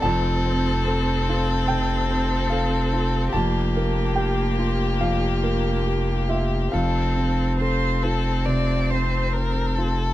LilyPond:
<<
  \new Staff \with { instrumentName = "Violin" } { \time 4/4 \key f \major \tempo 4 = 71 a'1 | g'1 | a'4 c''8 a'8 d''8 c''8 bes'8 a'8 | }
  \new Staff \with { instrumentName = "Grand piano" } { \time 4/4 \key f \major << { a''2 g''4 f''4 | a''4 g''4 f''4. e''8 | f''2.~ f''8 r8 | } \\ { f,8 c'8 a'8 f'8 c8 c'8 a'8 f'8 | f,8 bes8 g'8 f'8 f,8 bes8 g'8 f'8 | f,8 c'8 a'8 f'8 c8 c'8 c''8 f'8 | } >> }
  \new Staff \with { instrumentName = "String section" } { \time 4/4 \key f \major <c' f' a'>1 | <bes f' g'>1 | <c' f' a''>1 | }
  \new Staff \with { instrumentName = "Viola" } { \time 4/4 \key f \major c'1 | bes1 | c'2.~ c'8. r16 | }
  \new Staff \with { instrumentName = "Sub bass" } { \clef bass \time 4/4 \key f \major f,,1 | f,,1 | f,,1 | }
>>